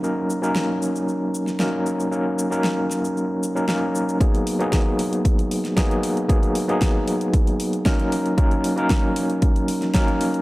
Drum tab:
HH |----------------|----------------|xxoxx-oxxxoxxxox|xxoxx-oxxxoxxxox|
SH |x-xxx-xxx-xxx-xx|x-xxx-xxx-xxx-xx|----------------|----------------|
SD |----o------oo---|----o-o-----o---|----o------oo---|----o-------o---|
BD |----------------|----------------|o---o---o---o---|o---o---o---o---|

HH |xxoxx-oxxxoxxxox|
SH |----------------|
SD |----o------oo---|
BD |o---o---o---o---|